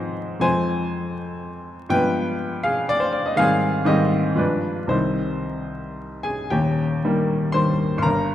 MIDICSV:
0, 0, Header, 1, 2, 480
1, 0, Start_track
1, 0, Key_signature, -3, "minor"
1, 0, Tempo, 511509
1, 415, Time_signature, 3, 2, 24, 8
1, 882, Tempo, 490597
1, 3762, Tempo, 526316
1, 6642, Tempo, 504626
1, 7886, End_track
2, 0, Start_track
2, 0, Title_t, "Grand piano"
2, 0, Program_c, 0, 0
2, 0, Control_c, 0, 64, 127
2, 0, Note_on_c, 0, 44, 52
2, 0, Note_on_c, 0, 53, 45
2, 0, Note_on_c, 0, 56, 41
2, 0, Note_on_c, 0, 60, 45
2, 0, Note_on_c, 0, 63, 61
2, 0, Note_on_c, 0, 68, 54
2, 0, Note_on_c, 0, 72, 74
2, 0, Note_on_c, 0, 75, 71
2, 363, Note_off_c, 0, 44, 0
2, 364, Note_off_c, 0, 53, 0
2, 365, Note_off_c, 0, 63, 0
2, 371, Note_off_c, 0, 56, 0
2, 372, Note_on_c, 0, 41, 47
2, 377, Note_off_c, 0, 60, 0
2, 380, Note_off_c, 0, 72, 0
2, 385, Note_on_c, 0, 53, 38
2, 387, Note_on_c, 0, 80, 90
2, 390, Note_on_c, 0, 56, 40
2, 394, Note_on_c, 0, 72, 74
2, 399, Note_on_c, 0, 60, 40
2, 431, Control_c, 0, 64, 0
2, 435, Note_off_c, 0, 68, 0
2, 438, Note_off_c, 0, 75, 0
2, 592, Control_c, 0, 64, 127
2, 1781, Note_off_c, 0, 41, 0
2, 1788, Note_off_c, 0, 53, 0
2, 1791, Note_off_c, 0, 56, 0
2, 1793, Note_off_c, 0, 72, 0
2, 1795, Note_off_c, 0, 60, 0
2, 1814, Note_on_c, 0, 43, 58
2, 1819, Note_on_c, 0, 53, 43
2, 1824, Note_on_c, 0, 79, 102
2, 1828, Note_off_c, 0, 80, 0
2, 1830, Note_on_c, 0, 56, 43
2, 1835, Note_on_c, 0, 59, 39
2, 1846, Note_on_c, 0, 71, 73
2, 1862, Control_c, 0, 64, 0
2, 2008, Control_c, 0, 64, 127
2, 2523, Note_off_c, 0, 71, 0
2, 2540, Note_on_c, 0, 77, 85
2, 2547, Note_on_c, 0, 68, 54
2, 2551, Note_off_c, 0, 79, 0
2, 2780, Note_off_c, 0, 68, 0
2, 2790, Note_on_c, 0, 74, 94
2, 2794, Note_off_c, 0, 77, 0
2, 2897, Note_on_c, 0, 72, 68
2, 2919, Note_off_c, 0, 74, 0
2, 3020, Note_on_c, 0, 74, 65
2, 3031, Note_off_c, 0, 72, 0
2, 3150, Note_on_c, 0, 75, 66
2, 3152, Note_off_c, 0, 74, 0
2, 3230, Note_off_c, 0, 43, 0
2, 3233, Note_off_c, 0, 53, 0
2, 3238, Note_off_c, 0, 56, 0
2, 3241, Note_off_c, 0, 59, 0
2, 3247, Note_on_c, 0, 44, 54
2, 3253, Note_on_c, 0, 51, 45
2, 3261, Note_on_c, 0, 77, 106
2, 3266, Note_on_c, 0, 55, 48
2, 3276, Note_off_c, 0, 75, 0
2, 3280, Note_on_c, 0, 68, 74
2, 3282, Note_on_c, 0, 60, 48
2, 3301, Control_c, 0, 64, 0
2, 3433, Control_c, 0, 64, 127
2, 3713, Note_off_c, 0, 44, 0
2, 3717, Note_off_c, 0, 51, 0
2, 3726, Note_off_c, 0, 68, 0
2, 3728, Note_on_c, 0, 44, 59
2, 3731, Note_off_c, 0, 55, 0
2, 3732, Note_on_c, 0, 51, 51
2, 3742, Note_off_c, 0, 60, 0
2, 3742, Note_on_c, 0, 75, 77
2, 3745, Note_on_c, 0, 55, 51
2, 3750, Note_off_c, 0, 77, 0
2, 3752, Note_on_c, 0, 67, 55
2, 3756, Note_on_c, 0, 60, 51
2, 4191, Note_off_c, 0, 67, 0
2, 4192, Note_on_c, 0, 43, 44
2, 4192, Note_on_c, 0, 53, 33
2, 4199, Note_off_c, 0, 44, 0
2, 4200, Note_off_c, 0, 51, 0
2, 4200, Note_on_c, 0, 56, 37
2, 4204, Note_on_c, 0, 71, 65
2, 4207, Note_off_c, 0, 55, 0
2, 4212, Note_off_c, 0, 60, 0
2, 4215, Note_on_c, 0, 62, 54
2, 4219, Note_off_c, 0, 75, 0
2, 4246, Control_c, 0, 64, 0
2, 4402, Control_c, 0, 64, 127
2, 4665, Note_on_c, 0, 36, 45
2, 4669, Note_off_c, 0, 62, 0
2, 4673, Note_on_c, 0, 51, 37
2, 4677, Note_off_c, 0, 43, 0
2, 4677, Note_off_c, 0, 53, 0
2, 4679, Note_on_c, 0, 72, 69
2, 4681, Note_off_c, 0, 56, 0
2, 4684, Note_on_c, 0, 55, 38
2, 4689, Note_on_c, 0, 60, 37
2, 4695, Note_on_c, 0, 63, 49
2, 4698, Note_off_c, 0, 71, 0
2, 4729, Control_c, 0, 64, 0
2, 4917, Control_c, 0, 64, 127
2, 5883, Note_off_c, 0, 63, 0
2, 5905, Note_on_c, 0, 80, 71
2, 5911, Note_off_c, 0, 72, 0
2, 5915, Note_on_c, 0, 68, 52
2, 6106, Note_off_c, 0, 36, 0
2, 6110, Note_off_c, 0, 51, 0
2, 6116, Note_off_c, 0, 55, 0
2, 6118, Note_off_c, 0, 60, 0
2, 6142, Note_off_c, 0, 68, 0
2, 6151, Note_on_c, 0, 79, 71
2, 6154, Note_off_c, 0, 80, 0
2, 6158, Note_on_c, 0, 67, 57
2, 6161, Note_on_c, 0, 27, 48
2, 6162, Note_on_c, 0, 39, 54
2, 6182, Control_c, 0, 64, 0
2, 6368, Control_c, 0, 64, 127
2, 6647, Note_on_c, 0, 55, 48
2, 6650, Note_on_c, 0, 51, 53
2, 6660, Note_on_c, 0, 58, 58
2, 7080, Note_off_c, 0, 67, 0
2, 7087, Note_off_c, 0, 55, 0
2, 7089, Note_off_c, 0, 51, 0
2, 7094, Note_off_c, 0, 58, 0
2, 7101, Note_on_c, 0, 84, 86
2, 7115, Note_off_c, 0, 79, 0
2, 7117, Note_on_c, 0, 72, 70
2, 7120, Note_on_c, 0, 51, 41
2, 7127, Note_on_c, 0, 55, 41
2, 7128, Note_on_c, 0, 58, 43
2, 7503, Note_off_c, 0, 72, 0
2, 7523, Note_off_c, 0, 84, 0
2, 7532, Note_on_c, 0, 43, 58
2, 7537, Note_on_c, 0, 84, 65
2, 7561, Note_off_c, 0, 27, 0
2, 7562, Note_off_c, 0, 39, 0
2, 7563, Note_off_c, 0, 51, 0
2, 7566, Note_off_c, 0, 55, 0
2, 7566, Note_off_c, 0, 58, 0
2, 7576, Note_on_c, 0, 82, 73
2, 7586, Note_on_c, 0, 70, 56
2, 7603, Note_off_c, 0, 84, 0
2, 7604, Note_on_c, 0, 31, 55
2, 7620, Control_c, 0, 64, 0
2, 7765, Control_c, 0, 64, 127
2, 7886, Note_off_c, 0, 31, 0
2, 7886, Note_off_c, 0, 43, 0
2, 7886, Note_off_c, 0, 70, 0
2, 7886, Note_off_c, 0, 82, 0
2, 7886, End_track
0, 0, End_of_file